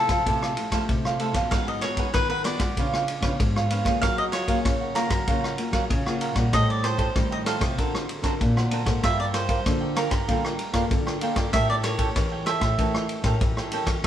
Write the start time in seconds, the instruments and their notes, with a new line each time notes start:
Already playing: nylon-string guitar C3, cavaquinho A4
0.07 nylon-string guitar F3, cavaquinho C5 F5, kick, cross-stick, ride
0.12 cavaquinho A4
0.26 nylon-string guitar C3 F3 A3 E4 G4, cavaquinho E4 A4 C5 F5, kick, ride
0.42 cavaquinho A4 C5 F5, cross-stick
0.56 nylon-string guitar A3 E4 G4, ride
0.70 nylon-string guitar F3 A3 E4 G4, cavaquinho E4 A4 C5 F5, kick, cross-stick, ride
0.89 nylon-string guitar C3, kick, ride
1.05 cavaquinho A4 C5 F5, cross-stick
1.19 nylon-string guitar A3 E4 G4, cavaquinho E4 A4 C5 F5, ride
1.33 nylon-string guitar F3 F#3 B3 D#4, cavaquinho A4 C5 F5, kick, cross-stick, ride
1.51 nylon-string guitar G#2 G#3, cavaquinho D#4 G#4 B4 F5 F#5, kick, cross-stick, ride
1.68 cavaquinho D#5
1.81 nylon-string guitar F#3 B3 D#4, cavaquinho D#4 G#4 B4 C#5 F#5, cross-stick, ride
1.97 cavaquinho D#4 G#4 B4 F#5, kick, ride
2.14 nylon-string guitar D#3 F#3 B3 D#4, cavaquinho B4, kick, cross-stick, ride
2.30 cavaquinho G#4 B4 F#5
2.44 nylon-string guitar F#3 B3 D#4, cavaquinho D#4 G#4 B4 D5 F#5, cross-stick, ride
2.58 nylon-string guitar G#3, cavaquinho B4 F#5, kick, cross-stick, ride
2.62 cavaquinho G#4
2.77 nylon-string guitar C#3 F3 B3 D4, cavaquinho F4 B4 C#5 F5, kick, ride
2.94 cavaquinho B4 F5, cross-stick
3.08 ride
3.21 nylon-string guitar C#3 F3 B3 D4, cavaquinho F4 B4 C#5 F5, kick, cross-stick, ride
3.40 nylon-string guitar G#2, kick, ride
3.56 cavaquinho B4 C#5 F5, cross-stick
3.70 nylon-string guitar F3 B3 D4, cavaquinho F4 B4 C#5 F5, ride
3.84 nylon-string guitar C#3 A#3 F4 G#4, cavaquinho B4 C#5 F5, kick, cross-stick, ride
4.02 nylon-string guitar F#3, cavaquinho A#4 C#5 F5 F#5, kick, cross-stick, ride
4.18 cavaquinho D#5
4.32 cavaquinho F4 A#4 C#5 F#5, cross-stick, ride
4.47 nylon-string guitar A#3 F4 G#4, cavaquinho F4 A#4 C#5 F#5, kick, ride
4.65 nylon-string guitar C#3, kick, cross-stick, ride
4.81 cavaquinho A#4 C#5 F#5
4.95 nylon-string guitar A#3 F4 G#4, cavaquinho F4 A#4 C#5 F#5, cross-stick, ride
5.09 nylon-string guitar F#3, cavaquinho A#4 C#5 F#5, kick, cross-stick, ride
5.28 nylon-string guitar C#3 F#3 A#3 F4 G#4, cavaquinho F4 A#4 C#5 F#5, kick, ride
5.43 cavaquinho A#4 C#5 F#5, cross-stick
5.58 nylon-string guitar A#3 F4 G#4, ride
5.71 nylon-string guitar F#3, cavaquinho F4 A#4 C#5 F#5, kick, cross-stick, ride
5.90 nylon-string guitar C#3, kick, ride
6.06 nylon-string guitar A#3 F4 G#4, cavaquinho A#4 C#5 F#5, cross-stick
6.20 cavaquinho F4 A#4 C#5 F#5, ride
6.34 nylon-string guitar A#2 G3 C4 D#4, cavaquinho A#4 C#5 F#5, kick, cross-stick, ride
6.53 nylon-string guitar A2, cavaquinho A4 C5 D#5 G5, kick, cross-stick, ride
6.70 cavaquinho D5
6.82 cavaquinho A4 C5 D#5 G5, cross-stick, ride
6.98 cavaquinho A4 C5 D#5 G5, kick, ride
7.16 nylon-string guitar A2 D#3 G3 C4 D#4, kick, cross-stick, ride
7.31 cavaquinho C5 D#5 G5
7.46 cavaquinho A4 C5 D#5 F5 G5, cross-stick, ride
7.59 nylon-string guitar C3, cavaquinho C5 D#5 G5, kick, cross-stick, ride
7.78 nylon-string guitar D3 C4 F#4 A#4, cavaquinho D4 A#4 C5 F#5, kick, ride
7.95 cavaquinho A#4 C5, cross-stick
8.09 ride
8.22 nylon-string guitar D3 C4 F#4 A#4, cavaquinho D4 A#4 C5 F#5, kick, cross-stick, ride
8.41 nylon-string guitar A#2 D3, kick, ride
8.57 cavaquinho A#4 C5 F#5, cross-stick
8.71 nylon-string guitar C4 F#4 A#4, cavaquinho D4 A#4 C5 F#5, ride
8.85 nylon-string guitar G#2 A#3 F4 A4, cavaquinho A#4 C5 F#5, kick, cross-stick, ride
9.03 nylon-string guitar G2 G3, cavaquinho F4 A#4 D5 E5 G5, kick, cross-stick, ride
9.20 cavaquinho D5
9.33 cavaquinho F4 A#4 C5 D5 G5, cross-stick, ride
9.48 cavaquinho F4 A#4 D5 G5, kick, ride
9.66 nylon-string guitar D3 A#3 F4 A4, kick, cross-stick, ride
9.81 cavaquinho A#4 D5 G5
9.95 cavaquinho F4 A#4 D5 G5, cross-stick, ride
10.10 nylon-string guitar G2, cavaquinho A#4 D5 G5, kick, cross-stick, ride
10.28 nylon-string guitar D3 G3 A#3 F4 A4, cavaquinho F4 A#4 D5 G5, kick, ride
10.44 cavaquinho A#4 D5 G5, cross-stick
10.59 ride
10.72 nylon-string guitar G2 A#3 F4 A4, cavaquinho F4 A#4 D5 G5, kick, cross-stick, ride
10.91 nylon-string guitar D3, kick, ride
11.06 cavaquinho A#4 D5 G5, cross-stick
11.21 nylon-string guitar A#3 F4 A4, cavaquinho F4 A#4 D5 G5, ride
11.34 nylon-string guitar G2, cavaquinho D5 G5, kick, cross-stick, ride
11.39 cavaquinho A#4
11.53 nylon-string guitar A2 A3 C#4 G4 A#4, cavaquinho G4 A4 C#5 E5 G5, kick, cross-stick, ride
11.70 cavaquinho D5
11.83 nylon-string guitar C#4 G4 A#4, cavaquinho G4 A4 C#5 G5, cross-stick, ride
11.98 cavaquinho G4 A4 C#5 G5, kick, ride
12.16 nylon-string guitar E3 C#4 G4 A#4, kick, cross-stick, ride
12.32 cavaquinho A4 C#5 G5
12.46 cavaquinho G4 A4 C#5 E5 G5, cross-stick, ride
12.60 nylon-string guitar A2, cavaquinho A4 C#5 G5, kick, cross-stick, ride
12.78 nylon-string guitar E3 A3 C#4 G4 A#4, cavaquinho G4 A4 C#5 G5, kick, ride
12.94 cavaquinho A4 C#5 G5, cross-stick
13.09 ride
13.22 nylon-string guitar A2 C#4 G4 A#4, cavaquinho G4 A4 C#5 G5, kick, cross-stick, ride
13.41 nylon-string guitar E3, kick, ride
13.57 cavaquinho A4 C#5 G5, cross-stick
13.71 nylon-string guitar C#4 G4 A#4, cavaquinho G4 A4 C#5 G5, ride
13.85 nylon-string guitar E3, cavaquinho A4 C#5 G5, kick, cross-stick, ride